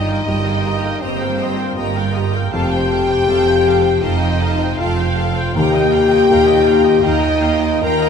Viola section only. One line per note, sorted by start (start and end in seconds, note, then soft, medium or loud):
0.08 0.27 A#4 soft
0.08 0.27 G5 soft
0.27 0.45 G4 soft
0.27 0.44 D#5 soft
0.46 0.64 A#4 soft
0.46 0.64 G5 soft
0.65 0.83 G4 soft
0.65 0.83 D#5 soft
0.83 1.02 A#4 soft
0.83 1.02 G5 soft
1.03 1.20 G4 soft
1.03 1.20 D#5 soft
1.21 1.40 A#4 soft
1.21 1.40 G5 soft
1.40 1.59 G4 soft
1.40 1.59 D#5 soft
1.58 1.77 A#4 soft
1.58 1.77 G5 soft
1.78 1.95 G4 soft
1.78 1.95 D#5 soft
1.96 2.15 A#4 soft
1.96 2.15 G5 soft
2.16 2.34 G4 soft
2.16 2.34 D#5 soft
2.34 2.53 A#4 soft
2.34 2.53 G5 soft
2.54 2.71 A4 medium
2.54 2.71 F5 medium
2.73 2.91 C5 soft
2.73 2.91 G5 soft
2.92 3.10 A4 soft
2.92 3.10 F5 soft
3.10 3.28 C5 soft
3.10 3.28 G5 soft
3.28 3.46 A4 soft
3.28 3.46 F5 soft
3.47 3.66 C5 soft
3.47 3.66 G5 soft
3.66 3.85 A4 soft
3.66 3.84 F5 medium
3.84 4.03 C5 soft
3.84 4.03 G5 soft
4.03 4.21 A4 soft
4.03 4.21 F5 soft
4.22 4.41 C5 soft
4.22 4.41 G5 soft
4.41 4.60 A4 soft
4.41 4.60 F5 soft
4.60 4.80 C5 soft
4.60 4.79 G5 soft
4.80 4.98 A4 medium
4.80 4.98 F5 medium
4.98 5.18 C5 soft
4.98 5.18 G5 soft
5.18 5.37 A4 soft
5.18 5.37 F5 soft
5.37 5.55 C5 soft
5.37 5.55 G5 soft
5.56 5.73 F5 medium
5.56 5.73 G5 medium
5.74 5.92 D#5 medium
5.74 5.92 G5 medium
5.93 6.11 F5 soft
5.93 6.09 G5 soft
6.10 6.29 D#5 medium
6.10 6.28 G5 medium
6.29 6.46 F5 medium
6.29 6.46 G5 soft
6.47 6.66 D#5 medium
6.47 6.65 G5 medium
6.66 6.84 F5 soft
6.66 6.83 G5 soft
6.85 7.03 D#5 soft
6.85 7.01 G5 soft
7.02 7.21 F5 medium
7.02 7.20 G5 medium
7.22 7.42 D#5 soft
7.22 7.40 G5 soft
7.41 7.62 F5 soft
7.41 7.60 G5 soft
7.61 7.82 D#5 soft
7.61 7.81 G5 soft
7.82 8.00 F5 medium
7.82 8.00 G5 medium
8.01 8.09 D#5 medium
8.01 8.09 G5 soft